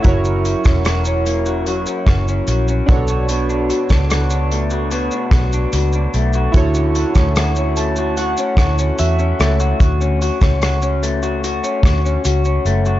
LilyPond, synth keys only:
\new Staff \with { instrumentName = "Synth keys" } { \time 4/4 \key d \major \tempo 4 = 74 << { r1 | r1 | r4. a''8 fis''4 e''4 | r1 | } \\ { <e' fis' ais' cis''>2.~ <e' fis' ais' cis''>8 <d' fis' a' cis''>8~ | <d' fis' a' cis''>2.~ <d' fis' a' cis''>8 r8 | <e' fis' a' cis''>1 | r1 | } >> }